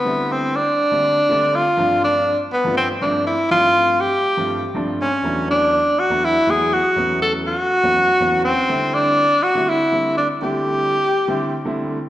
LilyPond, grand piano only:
\new Staff \with { instrumentName = "Grand piano" } { \time 7/8 \key d \mixolydian \tempo 4 = 122 <d g a c' e'>4 r8. <d g a c' g'>8 r16 <d g a c' g'>8 r8 | <g, f a c' d'>4 r8. <g, f a c' f'>8 r16 <g, f a c' d'>8 r8 | <g, f a c' d'>4 r8. <g, f a c' f'>8 r16 <g, f a c' d'>8 r8 | <e, fis a b d'>4 r8. <e, fis a b d'>8 r16 <e, fis a b e'>8 r8 |
<e, fis a b cis'>4 r8. <e, fis a b cis'>8 r16 <e, fis a b cis'>8 r8 | <d g a c' e'>4 r8. <d g a c' e'>8 r16 <d g a c' e'>8 r8 | <d g a c' e'>4 r8. <d g a c' e'>8 r16 <d g a c' e'>8 r8 | }